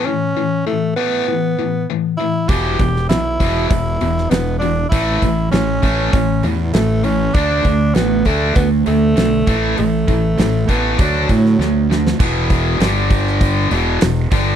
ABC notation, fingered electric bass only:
X:1
M:4/4
L:1/8
Q:1/4=99
K:Amix
V:1 name="Fingered electric bass" clef=bass
z8 | E,,, E,,, B,,, E,,, E,,, E,,, E,,,2 | A,,, A,,, A,,, A,,, A,,, E,, A,,,2 | D,, D,, A,,, D,, D,, D,, B,,, A,,, |
A,,, A,,, A,,, A,,, D,, A,, D,,2 | E,,,2 G,,,3 E,,, E,,, G,,, |]